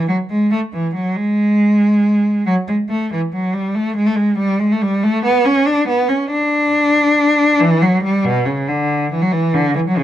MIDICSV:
0, 0, Header, 1, 2, 480
1, 0, Start_track
1, 0, Tempo, 436681
1, 2239, Tempo, 428878
1, 2718, Time_signature, 12, 3, 24, 8
1, 11189, End_track
2, 0, Start_track
2, 0, Title_t, "Cello"
2, 0, Program_c, 0, 42
2, 90, Note_on_c, 0, 54, 73
2, 178, Note_off_c, 0, 54, 0
2, 332, Note_on_c, 0, 56, 81
2, 563, Note_off_c, 0, 56, 0
2, 568, Note_on_c, 0, 57, 84
2, 656, Note_off_c, 0, 57, 0
2, 800, Note_on_c, 0, 52, 73
2, 1033, Note_off_c, 0, 52, 0
2, 1041, Note_on_c, 0, 54, 71
2, 1273, Note_off_c, 0, 54, 0
2, 1277, Note_on_c, 0, 56, 86
2, 2716, Note_on_c, 0, 54, 93
2, 2718, Note_off_c, 0, 56, 0
2, 2805, Note_off_c, 0, 54, 0
2, 2958, Note_on_c, 0, 56, 79
2, 3047, Note_off_c, 0, 56, 0
2, 3195, Note_on_c, 0, 57, 76
2, 3433, Note_off_c, 0, 57, 0
2, 3449, Note_on_c, 0, 52, 87
2, 3539, Note_off_c, 0, 52, 0
2, 3691, Note_on_c, 0, 54, 66
2, 3915, Note_on_c, 0, 55, 74
2, 3920, Note_off_c, 0, 54, 0
2, 4152, Note_off_c, 0, 55, 0
2, 4158, Note_on_c, 0, 57, 87
2, 4389, Note_on_c, 0, 56, 77
2, 4391, Note_off_c, 0, 57, 0
2, 4504, Note_off_c, 0, 56, 0
2, 4509, Note_on_c, 0, 57, 84
2, 4613, Note_on_c, 0, 56, 80
2, 4626, Note_off_c, 0, 57, 0
2, 4859, Note_off_c, 0, 56, 0
2, 4863, Note_on_c, 0, 55, 86
2, 5100, Note_off_c, 0, 55, 0
2, 5101, Note_on_c, 0, 56, 75
2, 5224, Note_off_c, 0, 56, 0
2, 5243, Note_on_c, 0, 57, 74
2, 5353, Note_on_c, 0, 55, 86
2, 5355, Note_off_c, 0, 57, 0
2, 5590, Note_off_c, 0, 55, 0
2, 5593, Note_on_c, 0, 57, 96
2, 5828, Note_off_c, 0, 57, 0
2, 5830, Note_on_c, 0, 59, 86
2, 6059, Note_off_c, 0, 59, 0
2, 6063, Note_on_c, 0, 61, 84
2, 6294, Note_on_c, 0, 62, 91
2, 6301, Note_off_c, 0, 61, 0
2, 6537, Note_on_c, 0, 59, 81
2, 6538, Note_off_c, 0, 62, 0
2, 6774, Note_off_c, 0, 59, 0
2, 6774, Note_on_c, 0, 61, 70
2, 7018, Note_off_c, 0, 61, 0
2, 7018, Note_on_c, 0, 62, 89
2, 8437, Note_off_c, 0, 62, 0
2, 8466, Note_on_c, 0, 52, 99
2, 8707, Note_off_c, 0, 52, 0
2, 8714, Note_on_c, 0, 54, 87
2, 8951, Note_on_c, 0, 55, 90
2, 8952, Note_off_c, 0, 54, 0
2, 9184, Note_off_c, 0, 55, 0
2, 9191, Note_on_c, 0, 47, 99
2, 9423, Note_on_c, 0, 49, 80
2, 9430, Note_off_c, 0, 47, 0
2, 9670, Note_off_c, 0, 49, 0
2, 9674, Note_on_c, 0, 50, 79
2, 10158, Note_off_c, 0, 50, 0
2, 10160, Note_on_c, 0, 52, 84
2, 10275, Note_on_c, 0, 54, 89
2, 10276, Note_off_c, 0, 52, 0
2, 10392, Note_on_c, 0, 52, 86
2, 10395, Note_off_c, 0, 54, 0
2, 10633, Note_off_c, 0, 52, 0
2, 10633, Note_on_c, 0, 50, 94
2, 10876, Note_off_c, 0, 50, 0
2, 10877, Note_on_c, 0, 52, 81
2, 10926, Note_off_c, 0, 52, 0
2, 11012, Note_on_c, 0, 54, 82
2, 11124, Note_off_c, 0, 54, 0
2, 11124, Note_on_c, 0, 49, 86
2, 11189, Note_off_c, 0, 49, 0
2, 11189, End_track
0, 0, End_of_file